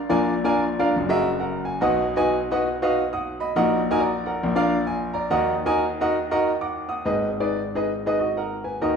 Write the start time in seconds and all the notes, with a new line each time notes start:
0.09 A#1 A#2 D4 F4 A#4 D5 G#5
0.44 D4 F4 A#4 D5 G#5
0.79 D4 F4 A#4 D5 F5
0.96 F#1 F#2
1.09 F#4 G#4 A#4 D#5 E5
1.40 A#4 F#5
1.65 G#5
1.81 B1 B2 D#4 F#4 B4 D#5 F#5
2.16 D#4 F#4 B4 D#5 G#5
2.51 D#4 F#4 B4 D#5 F#5
2.82 D#4 F#4 B4 D#5 F5
3.13 F#5 D#6
3.40 D#5 B5
3.56 A#1 A#2 D#4 F#4 A#4 D#5 F#5
3.91 D#4 F#4 A#4 D#5 G#5
4.00 D5 A#5
4.26 A#4 F#5
4.43 A#1 A#2
4.56 D4 F4 A#4 D5 F5
4.87 G#5
5.14 D5 A#5
5.30 D#2 D#3 D#4 F#4 A#4 D#5 F#5
5.66 D#4 F#4 A#4 D#5 G#5
6.01 D#4 F#4 A#4 D#5 F#5
6.31 D#4 F#4 A#4 D#5 F#5
6.61 F#5 D6
6.89 F#5 D#6
7.05 G#1 G#2 D#4 G#4 B4 D#5
7.40 D#4 G#4 B4 D5
7.75 D#4 G#4 B4 D#5
8.06 D#4 G#4 B4 D#5
8.19 F#4 D#5
8.37 A#4 F#5
8.64 B4 G#5
8.81 D#2 D#3 D#4 F#4 A#4 D#5